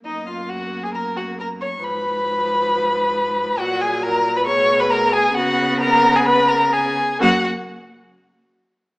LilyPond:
<<
  \new Staff \with { instrumentName = "Violin" } { \time 4/4 \key fis \major \tempo 4 = 134 dis''8 eis''8 fis''8. gis''16 ais''8 fis''8 ais''8 cis'''8 | ces'''1 | fis''8 gis''8 ais''8. b''16 cis'''8. b''16 ais''8 gis''8 | fis''4 ais''8. gis''16 b''8 ais''8 gis''4 |
fis''8 r2. r8 | }
  \new Staff \with { instrumentName = "Violin" } { \time 4/4 \key fis \major dis'8 eis'8 fis'8. gis'16 ais'8 fis'8 ais'8 cis''8 | ces''1 | fis'8 gis'8 ais'8. b'16 cis''8. b'16 ais'8 gis'8 | fis'4 ais'8. gis'16 b'8 ais'8 gis'4 |
fis'8 r2. r8 | }
  \new Staff \with { instrumentName = "Viola" } { \time 4/4 \key fis \major ais1 | f1 | fis2 gis2 | b2.~ b8 r8 |
ais8 r2. r8 | }
  \new Staff \with { instrumentName = "Cello" } { \clef bass \time 4/4 \key fis \major fis,1 | aes,1 | ais,2 b,2 | cis2.~ cis8 r8 |
fis,8 r2. r8 | }
>>